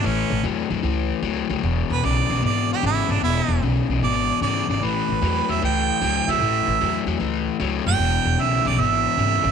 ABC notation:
X:1
M:4/4
L:1/8
Q:"Swing" 1/4=151
K:Emix
V:1 name="Harmonica"
C2 z6 | z B d2 d =G E D | E2 z2 d2 d d | B3 e =g3 e- |
e3 z4 =g- | =g2 e d e4 |]
V:2 name="Overdriven electric guitar" clef=bass
[A,,E,]2 [A,,F,] [A,,F,] [A,,E,]2 [A,,F,] [A,,F,] | [E,,B,,]2 [E,,C,] [E,,C,] [E,,B,,]2 [E,,C,] [E,,C,] | [E,,B,,]2 [E,,C,] [E,,C,] [E,,B,,]2 [E,,C,] [E,,C,] | [A,,E,]2 [A,,F,] [A,,F,] [A,,E,]2 [A,,F,] [A,,F,] |
[A,,E,]2 [A,,F,] [A,,F,] [A,,E,]2 [A,,F,] [A,,F,] | [E,,B,,]2 [E,,C,] [E,,C,] [E,,B,,]2 [E,,C,] [E,,C,] |]
V:3 name="Upright bass" clef=bass
A,,, A,,, E,, E,, C,,2 C,, D,, | E,,, E,,, B,,, B,,, G,,,2 G,,, G,,, | E,,, E,,, B,,, B,,, G,,,2 G,,, G,,, | A,,, A,,, E,, E,, C,,2 C,, C,, |
A,,, A,,, E,, E,, C,,2 C,, F,,, | E,,, E,,, B,,, B,,, G,,,2 G,,, G,,, |]